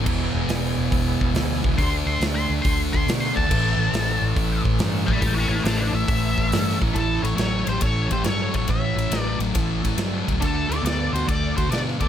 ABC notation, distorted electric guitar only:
X:1
M:4/4
L:1/8
Q:"Swing" 1/4=139
K:A
V:1 name="Distorted electric guitar" clef=bass
[E,,B,,E,]6- [E,,B,,E,] [E,,B,,E,] | [D,A,D]6- [D,A,D] [D,A,D] | [A,,E,A,]6- [A,,E,A,] [A,,E,A,] | [A,,E,A,]6- [A,,E,A,] [A,,E,A,] |
[A,,E,] [A,,E,] [A,,F,] [A,,F,] [A,,E,] [A,,E,] [A,,F,] [A,,F,] | [A,,E,] [A,,E,] [A,,F,] [A,,F,] [A,,E,] [A,,E,] [A,,F,] [A,,F,] | [D,A,] [D,A,] [D,B,] [D,B,] [D,A,] [D,A,] [D,B,] [D,B,] |]